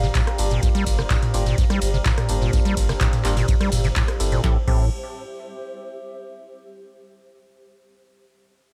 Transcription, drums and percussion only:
0.03 snare, tambourine
0.14 kick, snare, clap, closed hi-hat, ride, tambourine
0.27 cross-stick, closed hi-hat, tambourine
0.38 closed hi-hat, open hi-hat, ride, tambourine
0.50 closed hi-hat, tambourine
0.62 kick, closed hi-hat, ride, tambourine
0.75 closed hi-hat, tambourine
0.86 kick, snare, closed hi-hat, open hi-hat, ride, tambourine
0.98 cross-stick, closed hi-hat, tambourine
1.10 kick, snare, clap, closed hi-hat, ride, tambourine
1.22 snare, closed hi-hat, mid tom, tambourine
1.34 closed hi-hat, open hi-hat, ride, tambourine
1.46 snare, closed hi-hat, tambourine
1.58 kick, closed hi-hat, ride, tambourine
1.70 cross-stick, snare, closed hi-hat, tambourine
1.81 closed hi-hat, open hi-hat, ride, tambourine
1.94 tambourine
2.05 kick, snare, clap, closed hi-hat, ride, tambourine
2.17 cross-stick, closed hi-hat, mid tom, tambourine
2.29 closed hi-hat, open hi-hat, ride, tambourine
2.42 tambourine
2.53 kick, closed hi-hat, ride, tambourine
2.65 closed hi-hat, tambourine
2.77 kick, snare, closed hi-hat, open hi-hat, ride, tambourine
2.89 cross-stick, snare, closed hi-hat, tambourine
3.00 kick, snare, clap, closed hi-hat, ride, tambourine
3.13 snare, closed hi-hat, mid tom, tambourine
3.24 clap, closed hi-hat, open hi-hat, ride, tambourine
3.36 snare, open hi-hat, tambourine
3.48 kick, closed hi-hat, open hi-hat, ride, tambourine
3.61 cross-stick, snare, closed hi-hat, tambourine
3.72 closed hi-hat, mid tom, open hi-hat, ride, tambourine
3.84 snare, closed hi-hat, tambourine
3.96 kick, snare, clap, closed hi-hat, ride, tambourine
4.08 cross-stick, closed hi-hat, tambourine
4.20 closed hi-hat, open hi-hat, ride, tambourine
4.32 closed hi-hat, tambourine
4.44 kick, snare
4.68 kick, crash

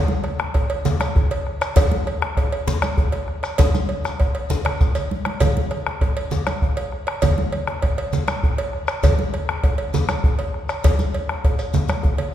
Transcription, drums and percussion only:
0.08 high conga
0.24 bombo rim, cowbell
0.39 bombo rim, djembe slap
0.54 bombo rim, bombo low, cowbell, djembe tone
0.70 cowbell
0.85 djembe slap, low conga, djembe bass, shekere
1.00 bombo rim, cowbell, high conga, shekere
1.16 bombo low, djembe tone
1.31 cowbell, djembe slap
1.47 bombo rim
1.61 bombo rim, cowbell, shekere
1.76 bombo rim, bombo low, cowbell, djembe slap, djembe tone, low conga, djembe bass, shekere
1.91 high conga
2.07 bombo rim, cowbell
2.22 bombo rim, djembe slap
2.37 bombo rim, bombo low, cowbell, djembe tone
2.52 cowbell
2.67 djembe slap, djembe bass, low conga, shekere
2.82 bombo rim, cowbell, high conga, shekere
2.97 bombo low, djembe tone
3.12 cowbell, djembe slap
3.28 bombo rim
3.43 bombo rim, cowbell, shekere
3.58 bombo rim, bombo low, cowbell, djembe slap, high conga, djembe tone, low conga, djembe bass, shekere
3.74 bombo rim, high conga, shekere
3.89 cowbell
4.05 bombo rim, djembe slap, high conga, shekere
4.20 bombo rim, bombo low, cowbell, djembe tone
4.35 cowbell
4.50 bombo rim, djembe slap, low conga, djembe bass, shekere
4.65 bombo rim, cowbell, low conga
4.80 bombo low, djembe slap, djembe tone, low conga, shekere
4.95 cowbell, djembe slap, low conga, shekere
5.11 djembe slap, high conga
5.25 bombo rim, cowbell, high conga
5.40 bombo rim, bombo low, cowbell, djembe slap, djembe tone, djembe bass, low conga, shekere
5.57 high conga
5.71 bombo rim, cowbell
5.87 bombo rim, djembe slap
6.01 bombo low, cowbell, djembe tone
6.17 cowbell
6.31 djembe slap, low conga, djembe bass, shekere
6.47 bombo rim, cowbell, high conga, shekere
6.62 bombo low, djembe tone
6.77 cowbell, djembe slap
6.92 bombo rim
7.07 bombo rim, cowbell
7.22 bombo rim, bombo low, cowbell, djembe slap, djembe tone, low conga, djembe bass, shekere
7.38 high conga
7.52 bombo rim, cowbell
7.67 bombo rim, djembe slap
7.82 bombo rim, bombo low, cowbell, djembe tone
7.98 cowbell
8.13 djembe slap, low conga, djembe bass, shekere
8.28 bombo rim, cowbell, high conga, shekere
8.43 bombo low, djembe tone
8.58 cowbell, djembe slap
8.73 bombo rim
8.87 bombo rim, cowbell, shekere
9.03 bombo rim, bombo low, cowbell, djembe slap, djembe tone, djembe bass, low conga, shekere
9.19 high conga
9.34 bombo rim, cowbell
9.49 bombo rim, djembe slap
9.63 bombo rim, bombo low, cowbell, djembe tone
9.78 cowbell
9.94 djembe slap, low conga, djembe bass, shekere
10.09 bombo rim, cowbell, high conga, shekere
10.24 bombo low, djembe tone
10.39 cowbell, djembe slap
10.54 bombo rim
10.69 bombo rim, cowbell, shekere
10.84 bombo rim, bombo low, cowbell, djembe slap, djembe tone, low conga, djembe bass, shekere
10.99 bombo rim, high conga, shekere
11.14 cowbell
11.29 bombo rim, djembe slap, high conga
11.44 bombo low, cowbell, djembe tone
11.59 cowbell, djembe slap, shekere
11.74 bombo rim, djembe slap, high conga, low conga, djembe bass, shekere
11.88 bombo rim, cowbell, djembe slap, high conga, shekere
12.03 bombo low, djembe slap, djembe tone
12.18 cowbell, djembe slap, low conga

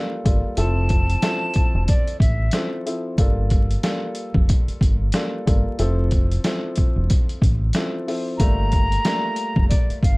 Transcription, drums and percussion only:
0.26 kick, closed hi-hat
0.57 closed hi-hat
0.89 kick, closed hi-hat
1.10 closed hi-hat
1.22 snare, closed hi-hat
1.54 kick, closed hi-hat
1.88 kick, closed hi-hat
2.08 closed hi-hat
2.20 kick, closed hi-hat
2.51 snare, closed hi-hat
2.87 closed hi-hat
3.18 kick, closed hi-hat
3.50 kick, closed hi-hat
3.71 closed hi-hat
3.83 snare, closed hi-hat
4.15 closed hi-hat
4.34 kick
4.49 kick, closed hi-hat
4.68 closed hi-hat
4.81 kick, closed hi-hat
5.12 snare, closed hi-hat
5.47 kick, closed hi-hat
5.79 closed hi-hat
6.11 kick, closed hi-hat
6.31 closed hi-hat
6.44 snare, closed hi-hat
6.76 kick, closed hi-hat
7.10 kick, closed hi-hat
7.29 closed hi-hat
7.42 kick, closed hi-hat
7.73 snare, closed hi-hat
8.08 open hi-hat
8.40 kick, closed hi-hat
8.72 kick, closed hi-hat
8.92 closed hi-hat
9.05 snare, closed hi-hat
9.36 closed hi-hat
9.56 kick
9.71 kick, closed hi-hat
9.90 closed hi-hat
10.03 kick, closed hi-hat

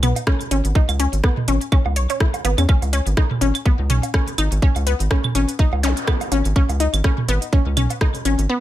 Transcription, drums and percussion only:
0.03 closed hi-hat, mid tom, claves
0.16 closed hi-hat, low woodblock
0.27 kick, cross-stick
0.41 closed hi-hat
0.51 closed hi-hat
0.65 closed hi-hat
0.75 kick
0.89 closed hi-hat, claves, low woodblock
1.00 closed hi-hat
1.13 closed hi-hat
1.24 kick, cross-stick
1.37 mid tom
1.48 closed hi-hat
1.61 closed hi-hat
1.72 kick, claves
1.86 low woodblock
1.96 closed hi-hat
2.10 closed hi-hat
2.20 kick, cross-stick
2.34 closed hi-hat, low woodblock
2.45 closed hi-hat, low woodblock
2.58 closed hi-hat, claves
2.69 kick, claves
2.82 closed hi-hat, low woodblock
2.93 closed hi-hat
3.07 closed hi-hat
3.17 kick, cross-stick
3.31 mid tom
3.42 closed hi-hat
3.55 closed hi-hat, claves
3.66 kick
3.90 closed hi-hat, mid tom
4.03 closed hi-hat, low woodblock
4.14 kick, cross-stick
4.28 closed hi-hat
4.38 closed hi-hat, claves
4.52 closed hi-hat
4.62 kick
4.76 closed hi-hat, low woodblock
4.87 closed hi-hat
5.00 closed hi-hat
5.11 kick, cross-stick
5.24 mid tom, claves
5.35 closed hi-hat
5.49 closed hi-hat
5.59 kick
5.73 low woodblock
5.83 closed hi-hat
5.97 closed hi-hat
6.07 kick, cross-stick, claves
6.21 closed hi-hat, low woodblock
6.32 closed hi-hat, low woodblock
6.45 closed hi-hat
6.56 kick
6.69 closed hi-hat, low woodblock
6.80 closed hi-hat
6.94 closed hi-hat, claves
7.04 kick, cross-stick
7.18 mid tom
7.29 closed hi-hat
7.42 closed hi-hat
7.53 kick
7.77 closed hi-hat, mid tom, claves
7.90 closed hi-hat, low woodblock
8.01 kick, cross-stick
8.15 closed hi-hat
8.25 closed hi-hat
8.39 closed hi-hat

